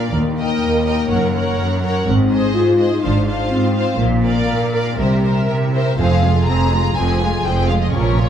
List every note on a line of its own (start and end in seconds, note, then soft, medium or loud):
0.00 0.16 A#2 soft
0.00 0.12 A#3 medium
0.00 0.16 D4 soft
0.00 0.16 F4 soft
0.00 0.13 A#4 soft
0.00 0.46 A#4 soft
0.00 0.14 D5 soft
0.00 0.14 F5 soft
0.13 0.54 D#2 soft
0.13 0.57 D#2 soft
0.13 1.13 D#3 soft
0.13 1.79 A#3 medium
0.31 0.61 D#4 soft
0.38 0.85 A#4 soft
0.38 0.85 D#5 soft
0.38 0.85 G5 soft
0.47 1.41 A#4 soft
0.63 1.05 D#2 soft
0.63 0.93 D#4 soft
0.79 1.13 G4 soft
0.87 1.10 A#4 soft
0.87 1.10 D#5 soft
0.87 1.10 G5 soft
0.94 1.12 D#4 soft
1.10 1.51 F#1 soft
1.10 1.53 F#2 soft
1.10 2.09 F#2 soft
1.10 1.34 A#4 soft
1.10 1.34 C#5 soft
1.10 1.32 F#5 soft
1.27 1.57 C#4 soft
1.33 1.83 A#4 soft
1.33 1.82 C#5 soft
1.33 1.81 F#5 soft
1.43 2.09 A#4 soft
1.59 2.01 F#2 soft
1.59 1.90 C#4 soft
1.75 2.09 F#4 soft
1.83 2.07 A#4 soft
1.83 2.06 C#5 soft
1.83 2.07 F#5 soft
1.91 2.09 C#4 soft
2.07 2.47 G#1 soft
2.07 3.03 G#2 soft
2.07 2.49 G#2 soft
2.07 2.51 C4 medium
2.23 2.53 C4 soft
2.30 2.78 G#4 soft
2.30 2.78 C5 soft
2.30 2.78 D#5 soft
2.40 4.02 G#4 soft
2.55 2.97 G#2 medium
2.55 2.87 C4 soft
2.55 2.90 F4 medium
2.72 3.05 D#4 soft
2.79 3.03 G#4 soft
2.79 3.02 C5 soft
2.79 3.02 D#5 soft
2.88 3.20 C4 soft
2.88 3.03 D#4 medium
3.01 3.43 G#1 medium
3.01 3.45 G#2 medium
3.01 4.02 G#2 soft
3.01 3.51 D4 medium
3.01 3.26 F4 soft
3.01 3.26 C5 soft
3.01 3.25 F5 soft
3.21 3.52 C4 soft
3.26 3.74 F4 soft
3.26 3.74 C5 soft
3.26 3.74 F5 soft
3.37 3.67 F4 soft
3.50 3.94 G#2 medium
3.50 3.98 C4 medium
3.50 3.84 C4 soft
3.69 4.65 F4 soft
3.76 3.99 F4 soft
3.76 3.99 C5 soft
3.76 3.99 F5 soft
3.85 4.02 C4 soft
3.98 4.41 A#1 medium
3.98 4.42 A#2 medium
3.98 5.01 A#2 medium
3.98 4.95 A#3 medium
4.17 4.48 D4 soft
4.23 4.72 A#4 soft
4.23 4.72 D5 soft
4.23 4.72 F5 soft
4.33 5.31 A#4 soft
4.49 4.92 A#2 soft
4.49 4.81 D4 soft
4.66 5.00 F4 soft
4.73 4.96 A#4 soft
4.73 4.98 D5 soft
4.73 4.98 F5 soft
4.83 5.00 D4 soft
4.97 5.40 C2 soft
4.97 5.42 C3 soft
4.97 6.01 C3 soft
4.97 5.48 G3 soft
4.97 5.21 A#4 soft
4.97 5.22 C5 soft
4.97 5.23 E5 soft
5.16 5.48 C4 soft
5.23 5.72 A#4 soft
5.23 5.43 C5 soft
5.23 5.73 E5 soft
5.33 6.01 A#4 soft
5.48 5.93 C3 soft
5.48 5.82 C4 soft
5.48 5.56 A#4 soft
5.66 6.01 E4 soft
5.74 5.98 A#4 soft
5.74 5.98 C5 soft
5.74 5.98 E5 soft
5.83 6.31 C4 soft
5.99 6.42 F1 soft
5.99 6.96 F2 soft
5.99 6.69 F2 soft
5.99 6.42 F2 soft
5.99 6.22 F3 soft
5.99 6.22 C4 soft
5.99 6.22 G#4 soft
5.99 6.22 C5 soft
5.99 6.44 F5 medium
6.16 7.13 C3 soft
6.24 6.48 G#3 soft
6.24 6.48 F4 soft
6.24 6.48 G#4 soft
6.32 7.28 C4 soft
6.48 6.91 F1 soft
6.48 6.91 F2 soft
6.48 6.73 F3 soft
6.48 6.73 C4 soft
6.48 6.80 F4 soft
6.48 6.71 G#4 soft
6.48 6.73 C5 soft
6.48 6.97 A#5 medium
6.65 7.61 G#4 soft
6.72 6.97 G#3 soft
6.72 6.97 F4 soft
6.72 6.96 G#4 soft
6.82 7.44 F4 soft
6.96 7.39 F1 soft
6.96 7.39 F2 soft
6.96 7.96 F2 soft
6.96 7.19 F3 soft
6.96 7.19 C4 soft
6.96 7.20 G#4 soft
6.96 7.20 C5 soft
6.96 7.45 G#5 soft
7.14 7.96 C3 soft
7.21 7.45 G#3 soft
7.21 7.45 F4 soft
7.21 7.45 G#4 soft
7.29 7.96 C4 soft
7.44 7.88 F1 soft
7.44 7.88 F2 soft
7.44 7.69 F3 soft
7.44 7.70 C4 soft
7.44 7.77 F4 soft
7.44 7.68 G#4 soft
7.44 7.70 C5 soft
7.44 7.69 G5 medium
7.62 7.96 G#4 soft
7.68 7.94 G#3 soft
7.68 7.94 F4 soft
7.68 7.94 G#4 soft
7.68 7.73 F5 medium
7.78 8.29 F4 soft
7.82 7.94 D#5 soft
7.93 8.29 A#1 soft
7.93 8.29 A#2 soft
7.93 8.16 F3 soft
7.93 8.16 C#4 soft
7.93 8.16 A#4 soft
7.93 8.29 C#5 medium
8.11 8.29 F3 soft
8.18 8.29 A#3 soft
8.18 8.29 F4 soft
8.18 8.29 C#5 soft